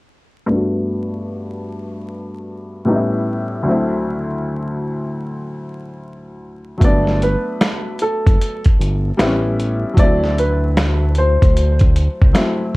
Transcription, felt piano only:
0.46 2.81 G2 medium
0.46 2.82 A3 medium
0.51 2.83 B3 medium
0.51 2.83 D4 medium
0.51 2.85 F#4 medium
2.85 3.65 A2 medium
2.85 3.65 G3 medium
2.85 3.65 B3 medium
2.85 3.66 C#4 medium
2.85 2.96 D#4 medium
2.95 3.69 E4 medium
3.63 6.76 D2 medium
3.63 6.76 F#3 medium
3.67 6.78 A3 medium
3.67 6.79 C4 medium
3.67 6.80 E4 medium
6.78 9.12 F#3 medium
6.78 9.13 A3 medium
6.83 9.15 B3 medium
6.83 9.16 D4 medium
9.17 9.96 G3 medium
9.17 9.97 B3 medium
9.17 9.27 C4 medium
9.17 9.98 E4 medium
9.26 10.01 C#4 medium
9.94 12.28 F#3 medium
9.94 12.30 A3 medium
9.99 12.31 C4 medium
9.99 12.32 E4 medium
12.33 12.77 F#3 medium
12.33 12.77 A3 soft
12.33 12.77 C4 medium
12.33 12.77 E4 medium

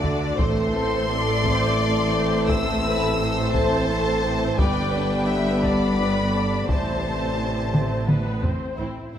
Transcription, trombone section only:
0.00 0.22 D3 medium
0.00 0.22 A3 medium
0.39 4.55 E3 medium
0.39 4.55 A3 medium
4.58 6.68 D3 medium
4.58 6.68 G3 medium
6.69 8.47 A2 medium
6.69 8.47 E3 medium

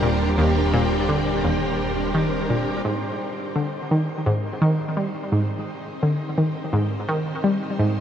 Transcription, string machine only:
0.00 2.81 G3 medium
0.00 2.81 D4 medium
0.00 2.81 G4 medium
0.00 2.81 A#4 medium
2.85 8.00 C4 medium
2.85 8.00 D#4 medium
2.85 8.00 G4 medium
2.85 8.00 C5 medium

